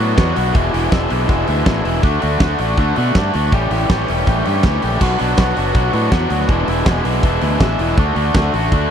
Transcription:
Already playing: overdriven electric guitar B2
0.00 fingered electric bass A2, overdriven electric guitar F#3 B3 D4 F#4
0.16 fingered electric bass E2, overdriven electric guitar B2 F#3 B3 D4 F#4, kick, snare
0.35 fingered electric bass B1, overdriven electric guitar B2 F#3 B3 D4 F#4, open hi-hat
0.54 fingered electric bass E1, overdriven electric guitar E2 B2 E3 G#3 D4 E4, kick
0.72 fingered electric bass E1, overdriven electric guitar E2 B2 E3 G#3 D4 E4, open hi-hat
0.90 fingered electric bass E1, overdriven electric guitar E2 B2 E3 G#3 D4 E4, kick, snare
1.09 fingered electric bass B1, overdriven electric guitar E2 B2 E3 G#3 D4 E4, open hi-hat
1.27 fingered electric bass E1, overdriven electric guitar E2 B2 E3 G#3 D4 E4, kick
1.46 fingered electric bass D2, overdriven electric guitar E2 B2 E3 G#3 D4 E4, open hi-hat
1.65 fingered electric bass A1, overdriven electric guitar E2 B2 E3 G#3 D4 E4, kick, snare
1.83 fingered electric bass E1, overdriven electric guitar E2 B2 E3 G#3 D4 E4, open hi-hat
2.03 fingered electric bass D2, overdriven electric guitar D3 A3 D4 F#4, kick
2.21 fingered electric bass D2, overdriven electric guitar D3 A3 D4 F#4, open hi-hat
2.40 fingered electric bass D2, overdriven electric guitar D3 A3 D4 F#4, kick, snare
2.59 fingered electric bass A1, overdriven electric guitar D3 A3 D4 F#4, open hi-hat
2.77 fingered electric bass D2, overdriven electric guitar D3 A3 D4 F#4, kick
2.96 fingered electric bass B2, overdriven electric guitar D3 A3 D4 F#4, open hi-hat
3.15 fingered electric bass G2, overdriven electric guitar D3 A3 D4 F#4, kick, snare
3.34 fingered electric bass D2, overdriven electric guitar D3 A3 D4 F#4, open hi-hat
3.52 fingered electric bass A1, overdriven electric guitar A2 E3 G3 C#4 G4, kick
3.71 fingered electric bass A1, overdriven electric guitar A2 E3 G3 C#4 G4, open hi-hat
3.89 fingered electric bass A1, overdriven electric guitar A2 E3 G3 C#4 G4, kick, snare
4.08 fingered electric bass E1, overdriven electric guitar A2 E3 G3 C#4 G4, open hi-hat
4.26 fingered electric bass A1, overdriven electric guitar A2 E3 G3 C#4 G4, kick
4.45 fingered electric bass G2, overdriven electric guitar A2 E3 G3 C#4 G4, open hi-hat
4.63 fingered electric bass D2, overdriven electric guitar A2 E3 G3 C#4 G4, kick, snare
4.82 fingered electric bass A#1, overdriven electric guitar A2 E3 G3 C#4 G4, open hi-hat
4.92 snare
5.01 fingered electric bass B1, overdriven electric guitar B2 F#3 B3 D4 F#4, kick, crash
5.19 fingered electric bass B1, overdriven electric guitar B2 F#3 B3 D4 F#4, open hi-hat
5.38 fingered electric bass B1, overdriven electric guitar B2 F#3 B3 D4 F#4, kick, snare
5.56 fingered electric bass F#1, overdriven electric guitar B2 F#3 B3 D4 F#4, open hi-hat
5.74 fingered electric bass B1, overdriven electric guitar B2 F#3 B3 D4 F#4, kick
5.93 fingered electric bass A2, overdriven electric guitar B2 F#3 B3 D4 F#4, open hi-hat
6.11 fingered electric bass E2, overdriven electric guitar B2 F#3 B3 D4 F#4, kick, snare
6.30 fingered electric bass D2, overdriven electric guitar B2 F#3 B3 D4 F#4, open hi-hat
6.40 snare
6.49 fingered electric bass E1, overdriven electric guitar E2 B2 E3 G#3 D4 E4, kick
6.66 fingered electric bass E1, overdriven electric guitar E2 B2 E3 G#3 D4 E4, open hi-hat
6.85 fingered electric bass E1, overdriven electric guitar E2 B2 E3 G#3 D4 E4, kick, snare
7.04 fingered electric bass B1, overdriven electric guitar E2 B2 E3 G#3 D4 E4, open hi-hat
7.23 fingered electric bass E1, overdriven electric guitar E2 B2 E3 G#3 D4 E4, kick
7.41 fingered electric bass D2, overdriven electric guitar E2 B2 E3 G#3 D4 E4, open hi-hat
7.60 fingered electric bass A1, overdriven electric guitar E2 B2 E3 G#3 D4 E4, kick, snare
7.79 fingered electric bass E1, overdriven electric guitar E2 B2 E3 G#3 D4 E4, open hi-hat
7.89 snare
7.97 fingered electric bass D2, overdriven electric guitar D3 A3 D4 F#4, kick
8.16 fingered electric bass D2, overdriven electric guitar D3 A3 D4 F#4, open hi-hat
8.35 fingered electric bass D2, overdriven electric guitar D3 A3 D4 F#4, kick, snare
8.54 fingered electric bass A1, overdriven electric guitar D3 A3 D4 F#4, open hi-hat
8.72 fingered electric bass D2, overdriven electric guitar D3 A3 D4 F#4, kick

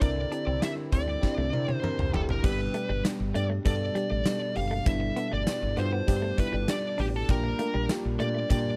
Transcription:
Already playing: analog synth pad D3 C4 D4 E4, fm electric piano G4 A4 A#4
0.00 fretless electric bass C2, fm electric piano C4 D4 E4 A#4, lead electric guitar D5, kick, closed hi-hat
0.16 muted clean electric guitar stroke
0.31 fm electric piano C4 D4 E4 G4, clean electric guitar D4, closed hi-hat
0.47 fretless electric bass C2, clean electric guitar C4
0.61 fm electric piano C4 D4 E4 G4, lead electric guitar E5, muted clean electric guitar stroke, snare, closed hi-hat
0.92 fretless electric bass D2, fm electric piano C4 D4 E4 G4, clean electric guitar C4, lead electric guitar D5, kick, closed hi-hat
1.08 clean electric guitar G3
1.21 fm electric piano C4 D4 E4 G4, kick, snare
1.38 fretless electric bass C2, clean electric guitar A3
1.52 fretless electric bass C3, fm electric piano C4 D4 E4 A#4, muted clean electric guitar stroke, high tom
1.68 clean electric guitar C4, high tom
1.73 lead electric guitar C5
1.82 fm electric piano C4 D4 E4 A#4, mid tom
1.99 fretless electric bass C2, mid tom
2.12 fretless electric bass F1, fm electric piano C4 D4 E4 G4, clean electric guitar C4, lead electric guitar A4, floor tom
2.29 fretless electric bass F#1, lead electric guitar A#4, floor tom
2.43 fretless electric bass G1, analog synth pad B2 G3 D4, fm electric piano G3 B3 D4 G4, lead electric guitar B4, kick, crash
2.59 muted clean electric guitar stroke
2.74 fm electric piano G3 B3 D4 G4, clean electric guitar A3, closed hi-hat
2.89 fretless electric bass G1, clean electric guitar G3
3.04 fm electric piano G3 B3 D4 G4, muted clean electric guitar stroke, snare, closed hi-hat, tambourine
3.20 fretless electric bass G1
3.34 fretless electric bass G2, fm electric piano G3 B3 D4 G4, clean electric guitar A3, lead electric guitar D5, closed hi-hat
3.50 clean electric guitar A3
3.65 fretless electric bass G2, fm electric piano G3 B3 D4 A4, lead electric guitar D5, muted clean electric guitar stroke, kick, closed hi-hat
3.95 fm electric piano G3 B3 D4 G4, clean electric guitar G3, closed hi-hat
4.10 fretless electric bass A1, clean electric guitar A3
4.25 fm electric piano G3 B3 D4 G4, clean electric guitar G3, snare, closed hi-hat, tambourine
4.40 muted clean electric guitar stroke
4.55 fretless electric bass F#1, fm electric piano G3 B3 D4 G4, lead electric guitar F5, open hi-hat
4.71 clean electric guitar A3
4.85 fretless electric bass G1, fm electric piano G3 B3 D4 E4, lead electric guitar E5, kick, closed hi-hat
5.01 muted clean electric guitar stroke
5.16 fm electric piano G3 B3 D4 A4, clean electric guitar B3, closed hi-hat
5.32 fretless electric bass G1, clean electric guitar A3, lead electric guitar D5
5.46 fm electric piano G3 B3 D4 G4, muted clean electric guitar stroke, snare, closed hi-hat, tambourine
5.62 fretless electric bass G1
5.77 fretless electric bass G2, fm electric piano G3 B3 D4 F4, clean electric guitar B3, lead electric guitar C5, closed hi-hat
5.93 clean electric guitar B3
6.07 fretless electric bass G2, fm electric piano G3 B3 D4 G4, kick, closed hi-hat
6.22 clean electric guitar A3
6.38 fm electric piano G3 B3 D4 E4, lead electric guitar B4, muted clean electric guitar stroke, kick, closed hi-hat
6.53 fretless electric bass G1, clean electric guitar G3
6.68 fm electric piano G3 B3 D4 G4, lead electric guitar D5, snare, closed hi-hat, tambourine
6.98 fretless electric bass A1, fm electric piano G3 B3 D4 G4, clean electric guitar D4, lead electric guitar G4, open hi-hat
7.16 lead electric guitar A4
7.29 fretless electric bass A#1, analog synth pad G3 A#3, fm electric piano A#3 D4 F4 G4, lead electric guitar A#4, kick, closed hi-hat
7.44 muted clean electric guitar stroke
7.59 clean electric guitar A3, fm electric piano A#3 D4 F4 A#4, closed hi-hat
7.74 fretless electric bass A#1, clean electric guitar G3
7.89 fm electric piano A#3 D4 F4 G4, muted clean electric guitar stroke, snare, closed hi-hat, tambourine
8.05 fretless electric bass A#1
8.20 fretless electric bass A#2, clean electric guitar A3, fm electric piano A#3 D4 F4 G4, lead electric guitar D5, closed hi-hat
8.35 clean electric guitar A3
8.50 fretless electric bass A#2, fm electric piano A#3 D4 F4 G4, lead electric guitar D5, muted clean electric guitar stroke, kick, closed hi-hat

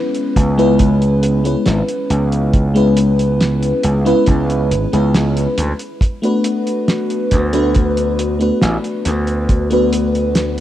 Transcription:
Already playing: fm electric piano G#3 B3 C#4 E4 B4
0.14 closed hi-hat
0.36 slap bass C#2, kick, closed hi-hat
0.58 fm electric piano G#3 B3 C#4 E4 B4, closed hi-hat
0.79 kick, closed hi-hat
1.02 closed hi-hat
1.23 closed hi-hat
1.44 fm electric piano G#3 B3 C#4 E4 B4, closed hi-hat
1.66 slap bass G#1, snare, closed hi-hat
1.88 closed hi-hat
2.10 slap bass C#2, closed hi-hat
2.32 closed hi-hat
2.53 kick, closed hi-hat
2.74 fm electric piano G#3 B3 C#4 E4 B4, closed hi-hat
2.97 closed hi-hat
3.19 closed hi-hat
3.41 snare, closed hi-hat
3.63 closed hi-hat
3.83 slap bass C#2, closed hi-hat
4.05 fm electric piano G#3 B3 C#4 E4 B4, closed hi-hat
4.26 slap bass C#2, kick, closed hi-hat
4.50 closed hi-hat
4.71 slap bass G#1, closed hi-hat
4.92 slap bass C#2, fm electric piano G#3 B3 C#4 E4 B4, closed hi-hat
5.15 snare, closed hi-hat
5.37 closed hi-hat
5.58 slap bass D2, closed hi-hat
5.79 closed hi-hat
6.01 kick, closed hi-hat
6.22 fm electric piano A3 B3 D4 F#4 B4, closed hi-hat
6.44 closed hi-hat
6.67 closed hi-hat
6.88 snare, closed hi-hat
7.10 closed hi-hat
7.31 slap bass D2, kick, closed hi-hat
7.53 fm electric piano A3 B3 D4 F#4 B4, closed hi-hat
7.75 kick, closed hi-hat
7.97 closed hi-hat
8.19 closed hi-hat
8.39 fm electric piano A3 B3 D4 F#4 B4, closed hi-hat
8.62 slap bass A1, snare, closed hi-hat
8.84 closed hi-hat
9.05 slap bass D2, closed hi-hat
9.27 closed hi-hat
9.49 kick, closed hi-hat
9.70 fm electric piano A3 B3 D4 F#4 B4, closed hi-hat
9.92 closed hi-hat
10.15 closed hi-hat
10.35 snare, closed hi-hat

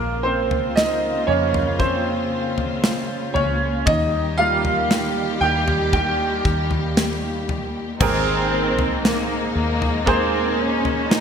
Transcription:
Already playing: fingered electric bass A#1, string section C#3 A#3 F4, grand piano A#3 A#4
0.23 grand piano C4 C5
0.51 fingered electric bass C#2, floor tom
0.75 grand piano D#4 D#5, snare
1.27 fingered electric bass F2, grand piano C#3 A#3 C#4 C#5
1.54 floor tom
1.79 grand piano C4 C5, kick
2.58 floor tom
2.84 snare
3.34 fingered electric bass C#2, grand piano C#4 C#5, floor tom
3.85 fingered electric bass D#2, string section D#3 G3 G4, grand piano D#4 D#5, kick, floor tom
4.38 grand piano D#3 G3 A#3 F4 F5
4.65 floor tom
4.91 snare
5.41 fingered electric bass D#2, grand piano G4 G5
5.68 floor tom
5.93 grand piano G4 G5, kick, floor tom
6.45 fingered electric bass D#2, kick
6.71 floor tom
6.97 snare
7.49 floor tom
7.99 fingered electric bass G#1, grand piano G#2 D#3 C4 G#4 A#4, string section A#2 G#3 A#3 D#4, cello section C4, kick, floor tom, crash
8.78 fingered electric bass C2, floor tom
9.04 cello section A#3, snare
9.55 fingered electric bass D#2, cello section A#3
9.82 floor tom
10.06 grand piano A#3 G#4 C5, cello section C4, kick
10.58 cello section C#4
10.85 floor tom
11.11 cello section D#4, snare

